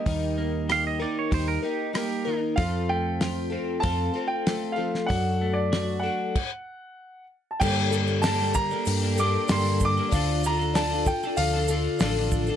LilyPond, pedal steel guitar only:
\new Staff \with { instrumentName = "Pedal steel guitar" } { \time 4/4 \key g \minor \tempo 4 = 95 r4 f''16 ees''16 d''16 cis''16 c''16 bes'16 g'8 g'8. r16 | r1 | r1 | r1 |
r1 | }